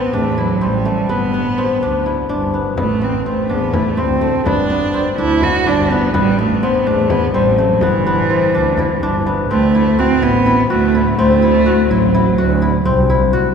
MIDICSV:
0, 0, Header, 1, 5, 480
1, 0, Start_track
1, 0, Tempo, 480000
1, 1097, Time_signature, 7, 3, 24, 8
1, 13544, End_track
2, 0, Start_track
2, 0, Title_t, "Kora"
2, 0, Program_c, 0, 46
2, 0, Note_on_c, 0, 60, 59
2, 0, Note_on_c, 0, 62, 76
2, 0, Note_on_c, 0, 64, 62
2, 130, Note_off_c, 0, 62, 0
2, 134, Note_on_c, 0, 62, 70
2, 244, Note_off_c, 0, 64, 0
2, 377, Note_on_c, 0, 64, 63
2, 609, Note_off_c, 0, 60, 0
2, 613, Note_on_c, 0, 60, 69
2, 854, Note_on_c, 0, 57, 67
2, 1092, Note_on_c, 0, 59, 77
2, 1152, Note_off_c, 0, 60, 0
2, 1332, Note_off_c, 0, 59, 0
2, 1336, Note_on_c, 0, 59, 63
2, 1579, Note_on_c, 0, 60, 64
2, 1639, Note_off_c, 0, 59, 0
2, 1814, Note_off_c, 0, 62, 0
2, 1825, Note_on_c, 0, 62, 66
2, 1944, Note_off_c, 0, 64, 0
2, 2058, Note_on_c, 0, 64, 59
2, 2290, Note_off_c, 0, 62, 0
2, 2294, Note_on_c, 0, 62, 72
2, 2537, Note_on_c, 0, 59, 58
2, 2597, Note_off_c, 0, 60, 0
2, 2769, Note_off_c, 0, 59, 0
2, 2773, Note_on_c, 0, 59, 65
2, 2851, Note_off_c, 0, 57, 0
2, 3011, Note_off_c, 0, 59, 0
2, 3015, Note_on_c, 0, 59, 60
2, 3260, Note_on_c, 0, 60, 60
2, 3320, Note_off_c, 0, 59, 0
2, 3490, Note_off_c, 0, 62, 0
2, 3494, Note_on_c, 0, 62, 67
2, 3625, Note_off_c, 0, 64, 0
2, 3733, Note_on_c, 0, 64, 59
2, 3968, Note_off_c, 0, 60, 0
2, 3972, Note_on_c, 0, 60, 73
2, 4212, Note_on_c, 0, 57, 62
2, 4455, Note_on_c, 0, 59, 74
2, 4515, Note_off_c, 0, 60, 0
2, 4696, Note_off_c, 0, 59, 0
2, 4700, Note_on_c, 0, 59, 68
2, 4940, Note_on_c, 0, 60, 63
2, 5000, Note_off_c, 0, 59, 0
2, 5173, Note_off_c, 0, 62, 0
2, 5183, Note_on_c, 0, 62, 69
2, 5300, Note_off_c, 0, 64, 0
2, 5428, Note_on_c, 0, 64, 71
2, 5660, Note_off_c, 0, 62, 0
2, 5664, Note_on_c, 0, 62, 78
2, 5904, Note_on_c, 0, 59, 63
2, 5964, Note_off_c, 0, 60, 0
2, 6135, Note_off_c, 0, 59, 0
2, 6139, Note_on_c, 0, 59, 78
2, 6209, Note_off_c, 0, 57, 0
2, 6382, Note_off_c, 0, 59, 0
2, 6386, Note_on_c, 0, 59, 69
2, 6629, Note_on_c, 0, 60, 75
2, 6689, Note_off_c, 0, 59, 0
2, 6863, Note_off_c, 0, 62, 0
2, 6867, Note_on_c, 0, 62, 70
2, 6995, Note_off_c, 0, 64, 0
2, 7099, Note_on_c, 0, 64, 61
2, 7338, Note_off_c, 0, 60, 0
2, 7342, Note_on_c, 0, 60, 83
2, 7583, Note_on_c, 0, 57, 62
2, 7824, Note_on_c, 0, 59, 72
2, 7884, Note_off_c, 0, 60, 0
2, 8061, Note_off_c, 0, 59, 0
2, 8065, Note_on_c, 0, 59, 72
2, 8300, Note_on_c, 0, 60, 64
2, 8360, Note_off_c, 0, 59, 0
2, 8540, Note_off_c, 0, 62, 0
2, 8544, Note_on_c, 0, 62, 66
2, 8666, Note_off_c, 0, 64, 0
2, 8785, Note_on_c, 0, 64, 67
2, 9024, Note_off_c, 0, 62, 0
2, 9028, Note_on_c, 0, 62, 82
2, 9265, Note_on_c, 0, 59, 63
2, 9325, Note_off_c, 0, 60, 0
2, 9507, Note_on_c, 0, 60, 73
2, 9567, Note_off_c, 0, 59, 0
2, 9580, Note_off_c, 0, 57, 0
2, 9743, Note_off_c, 0, 64, 0
2, 9747, Note_on_c, 0, 64, 64
2, 9987, Note_on_c, 0, 66, 71
2, 10219, Note_off_c, 0, 64, 0
2, 10223, Note_on_c, 0, 64, 80
2, 10458, Note_off_c, 0, 64, 0
2, 10462, Note_on_c, 0, 64, 76
2, 10697, Note_off_c, 0, 66, 0
2, 10701, Note_on_c, 0, 66, 75
2, 10708, Note_off_c, 0, 62, 0
2, 10942, Note_off_c, 0, 64, 0
2, 10946, Note_on_c, 0, 64, 65
2, 11181, Note_off_c, 0, 60, 0
2, 11185, Note_on_c, 0, 60, 84
2, 11418, Note_off_c, 0, 64, 0
2, 11422, Note_on_c, 0, 64, 69
2, 11655, Note_off_c, 0, 66, 0
2, 11659, Note_on_c, 0, 66, 74
2, 11903, Note_off_c, 0, 64, 0
2, 11907, Note_on_c, 0, 64, 69
2, 12140, Note_off_c, 0, 64, 0
2, 12144, Note_on_c, 0, 64, 76
2, 12378, Note_off_c, 0, 66, 0
2, 12382, Note_on_c, 0, 66, 86
2, 12616, Note_off_c, 0, 64, 0
2, 12620, Note_on_c, 0, 64, 72
2, 12851, Note_off_c, 0, 60, 0
2, 12855, Note_on_c, 0, 60, 91
2, 13092, Note_off_c, 0, 64, 0
2, 13096, Note_on_c, 0, 64, 75
2, 13326, Note_off_c, 0, 66, 0
2, 13330, Note_on_c, 0, 66, 77
2, 13544, Note_off_c, 0, 60, 0
2, 13544, Note_off_c, 0, 64, 0
2, 13544, Note_off_c, 0, 66, 0
2, 13544, End_track
3, 0, Start_track
3, 0, Title_t, "Cello"
3, 0, Program_c, 1, 42
3, 0, Note_on_c, 1, 59, 79
3, 145, Note_on_c, 1, 57, 81
3, 160, Note_off_c, 1, 59, 0
3, 383, Note_on_c, 1, 54, 83
3, 398, Note_off_c, 1, 57, 0
3, 629, Note_on_c, 1, 55, 74
3, 644, Note_off_c, 1, 54, 0
3, 1095, Note_on_c, 1, 59, 82
3, 1110, Note_off_c, 1, 55, 0
3, 2059, Note_off_c, 1, 59, 0
3, 2805, Note_on_c, 1, 57, 72
3, 3045, Note_on_c, 1, 60, 73
3, 3060, Note_off_c, 1, 57, 0
3, 3268, Note_off_c, 1, 60, 0
3, 3274, Note_on_c, 1, 57, 72
3, 3507, Note_on_c, 1, 59, 77
3, 3522, Note_off_c, 1, 57, 0
3, 3744, Note_on_c, 1, 57, 81
3, 3759, Note_off_c, 1, 59, 0
3, 3991, Note_on_c, 1, 60, 78
3, 4006, Note_off_c, 1, 57, 0
3, 4460, Note_off_c, 1, 60, 0
3, 4466, Note_on_c, 1, 62, 86
3, 5145, Note_off_c, 1, 62, 0
3, 5186, Note_on_c, 1, 64, 93
3, 5437, Note_on_c, 1, 66, 94
3, 5452, Note_off_c, 1, 64, 0
3, 5680, Note_on_c, 1, 62, 84
3, 5695, Note_off_c, 1, 66, 0
3, 5916, Note_on_c, 1, 59, 81
3, 5931, Note_off_c, 1, 62, 0
3, 6150, Note_off_c, 1, 59, 0
3, 6158, Note_on_c, 1, 55, 96
3, 6405, Note_on_c, 1, 57, 85
3, 6420, Note_off_c, 1, 55, 0
3, 6633, Note_on_c, 1, 59, 77
3, 6648, Note_off_c, 1, 57, 0
3, 6871, Note_on_c, 1, 57, 87
3, 6886, Note_off_c, 1, 59, 0
3, 7110, Note_on_c, 1, 59, 91
3, 7124, Note_off_c, 1, 57, 0
3, 7339, Note_off_c, 1, 59, 0
3, 7345, Note_on_c, 1, 55, 79
3, 7581, Note_on_c, 1, 54, 77
3, 7596, Note_off_c, 1, 55, 0
3, 7828, Note_on_c, 1, 52, 83
3, 7843, Note_off_c, 1, 54, 0
3, 9263, Note_off_c, 1, 52, 0
3, 9512, Note_on_c, 1, 57, 100
3, 9996, Note_on_c, 1, 60, 100
3, 10011, Note_off_c, 1, 57, 0
3, 10229, Note_on_c, 1, 59, 101
3, 10244, Note_off_c, 1, 60, 0
3, 10690, Note_off_c, 1, 59, 0
3, 10696, Note_on_c, 1, 57, 86
3, 11142, Note_off_c, 1, 57, 0
3, 11172, Note_on_c, 1, 57, 100
3, 11893, Note_on_c, 1, 54, 80
3, 11908, Note_off_c, 1, 57, 0
3, 12611, Note_off_c, 1, 54, 0
3, 13544, End_track
4, 0, Start_track
4, 0, Title_t, "Double bass"
4, 0, Program_c, 2, 43
4, 131, Note_on_c, 2, 40, 79
4, 521, Note_off_c, 2, 40, 0
4, 616, Note_on_c, 2, 33, 93
4, 1005, Note_off_c, 2, 33, 0
4, 1096, Note_on_c, 2, 31, 84
4, 1680, Note_off_c, 2, 31, 0
4, 1819, Note_on_c, 2, 38, 78
4, 2208, Note_off_c, 2, 38, 0
4, 2298, Note_on_c, 2, 31, 83
4, 2688, Note_off_c, 2, 31, 0
4, 2782, Note_on_c, 2, 33, 82
4, 3364, Note_off_c, 2, 33, 0
4, 3499, Note_on_c, 2, 40, 80
4, 3888, Note_off_c, 2, 40, 0
4, 3982, Note_on_c, 2, 38, 91
4, 4371, Note_off_c, 2, 38, 0
4, 4461, Note_on_c, 2, 31, 86
4, 5044, Note_off_c, 2, 31, 0
4, 5182, Note_on_c, 2, 38, 88
4, 5570, Note_off_c, 2, 38, 0
4, 5665, Note_on_c, 2, 31, 100
4, 6052, Note_off_c, 2, 31, 0
4, 6146, Note_on_c, 2, 33, 79
4, 6727, Note_off_c, 2, 33, 0
4, 6863, Note_on_c, 2, 40, 88
4, 7251, Note_off_c, 2, 40, 0
4, 7347, Note_on_c, 2, 33, 101
4, 7733, Note_off_c, 2, 33, 0
4, 7827, Note_on_c, 2, 31, 90
4, 8406, Note_off_c, 2, 31, 0
4, 8542, Note_on_c, 2, 38, 85
4, 8929, Note_off_c, 2, 38, 0
4, 9020, Note_on_c, 2, 31, 96
4, 9407, Note_off_c, 2, 31, 0
4, 9505, Note_on_c, 2, 38, 87
4, 10083, Note_off_c, 2, 38, 0
4, 10214, Note_on_c, 2, 33, 93
4, 10602, Note_off_c, 2, 33, 0
4, 10700, Note_on_c, 2, 38, 91
4, 11086, Note_off_c, 2, 38, 0
4, 11181, Note_on_c, 2, 38, 95
4, 11759, Note_off_c, 2, 38, 0
4, 11905, Note_on_c, 2, 33, 92
4, 12287, Note_off_c, 2, 33, 0
4, 12383, Note_on_c, 2, 38, 98
4, 12765, Note_off_c, 2, 38, 0
4, 12856, Note_on_c, 2, 36, 92
4, 13434, Note_off_c, 2, 36, 0
4, 13544, End_track
5, 0, Start_track
5, 0, Title_t, "Frame drum"
5, 2775, Note_on_c, 9, 64, 58
5, 2875, Note_off_c, 9, 64, 0
5, 3262, Note_on_c, 9, 64, 16
5, 3362, Note_off_c, 9, 64, 0
5, 3735, Note_on_c, 9, 64, 60
5, 3835, Note_off_c, 9, 64, 0
5, 4227, Note_on_c, 9, 64, 17
5, 4327, Note_off_c, 9, 64, 0
5, 4465, Note_on_c, 9, 64, 60
5, 4565, Note_off_c, 9, 64, 0
5, 4942, Note_on_c, 9, 64, 18
5, 5042, Note_off_c, 9, 64, 0
5, 5418, Note_on_c, 9, 64, 55
5, 5518, Note_off_c, 9, 64, 0
5, 5907, Note_on_c, 9, 64, 17
5, 6007, Note_off_c, 9, 64, 0
5, 6145, Note_on_c, 9, 64, 57
5, 6245, Note_off_c, 9, 64, 0
5, 6630, Note_on_c, 9, 64, 16
5, 6730, Note_off_c, 9, 64, 0
5, 7099, Note_on_c, 9, 64, 60
5, 7199, Note_off_c, 9, 64, 0
5, 7578, Note_on_c, 9, 64, 18
5, 7678, Note_off_c, 9, 64, 0
5, 7811, Note_on_c, 9, 64, 60
5, 7911, Note_off_c, 9, 64, 0
5, 8536, Note_on_c, 9, 64, 20
5, 8636, Note_off_c, 9, 64, 0
5, 8772, Note_on_c, 9, 64, 51
5, 8872, Note_off_c, 9, 64, 0
5, 9017, Note_on_c, 9, 64, 18
5, 9117, Note_off_c, 9, 64, 0
5, 13544, End_track
0, 0, End_of_file